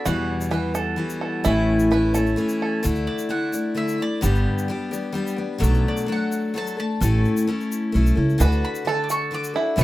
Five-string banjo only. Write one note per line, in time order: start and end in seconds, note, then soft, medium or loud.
0.05 0.51 F#4 loud
0.51 0.74 B4 medium
0.75 1.20 A4 medium
1.21 1.44 A4 medium
1.45 1.90 E4 loud
1.92 2.14 B4 medium
2.14 2.60 A4 medium
2.62 2.84 A4 medium
8.41 8.86 B4 medium
8.87 9.09 A4 medium
9.10 9.55 A4 medium
9.56 9.78 E4 medium
9.79 9.84 B4 medium